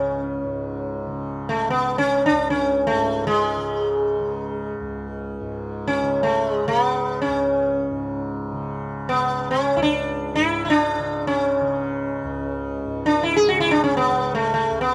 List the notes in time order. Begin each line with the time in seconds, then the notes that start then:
Already playing: C#2 G#2 C#3 C#4
0.44 G#2
1.07 C#3
1.49 A3
1.69 C#3 B3
1.98 C#4
2.26 D4
2.31 C#2
2.50 C#4
2.87 A3
2.92 G#2
3.27 G#3
3.57 C#3
4.19 C#3
4.80 C#2
5.40 G#2
5.88 C#4
6.02 C#3
6.23 A3
6.50 G#3
6.65 C#3 B3
7.22 C#4
7.27 C#2
7.90 G#2
8.52 C#3
9.09 B3
9.14 C#3
9.51 C#4
9.76 C#2 E4
9.82 D4
10.36 G#2 E4
10.65 E4
10.70 D4
10.99 C#3
11.27 C#4
11.61 C#3
12.24 C#2
12.85 G#2
13.06 D4
13.23 E4
13.36 G#4
13.46 C#3 F#4
13.60 E4
13.71 D4
13.84 C#4
13.97 B3
14.09 C#3
14.35 A3
14.54 A3
14.71 C#2
14.81 B3